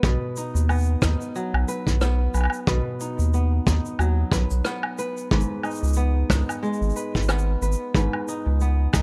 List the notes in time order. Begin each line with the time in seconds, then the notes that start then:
Already playing: B3 D#4
0.03 B1 B2 B4, kick, shaker
0.36 D#4, shaker
0.55 D#2, shaker
0.69 B3, low woodblock, shaker
0.72 shaker
0.75 shaker
0.78 shaker
0.80 shaker
0.83 shaker
0.85 shaker
1.02 D#2 D#4, kick, cross-stick, shaker
1.21 shaker
1.36 F#3, shaker
1.54 B1, low woodblock
1.68 B4, shaker
1.87 B1, kick, shaker
2.01 B3, cross-stick, shaker
2.34 B1 B4, low woodblock, shaker
2.37 low woodblock
2.41 low woodblock
2.44 low woodblock
2.45 low woodblock
2.50 low woodblock, shaker
2.67 B1 B2 B4, kick, shaker
3.01 D#4, shaker
3.19 D#2, shaker
3.34 B3, shaker
3.67 D#2 D#4, kick, shaker
3.85 shaker
3.99 D#2 F#3, low woodblock, shaker
4.32 B1 B4, kick, shaker
4.51 B1, shaker
4.65 B3, cross-stick, shaker
4.83 low woodblock
4.98 B4, shaker
5.17 shaker
5.31 G#1 G#2 B4, kick
5.41 shaker
5.63 D#4, low woodblock, shaker
5.71 shaker
5.74 shaker
5.83 C#2, shaker
5.87 shaker
5.93 B3, shaker
5.97 shaker
6.30 C#2 D#4, kick, cross-stick, shaker
6.49 low woodblock, shaker
6.63 G#3, shaker
6.73 shaker
6.81 G#1, shaker
6.90 shaker
6.96 B4, shaker
7.15 G#1, kick, shaker
7.22 shaker
7.29 B3, cross-stick, low woodblock, shaker
7.38 shaker
7.62 G#1 B4, shaker
7.72 shaker
7.95 G#1 G#2 B4, kick, shaker
8.13 low woodblock
8.28 D#4, shaker
8.46 C#2
8.61 B3, shaker
8.93 C#2 D#4, kick, low woodblock, shaker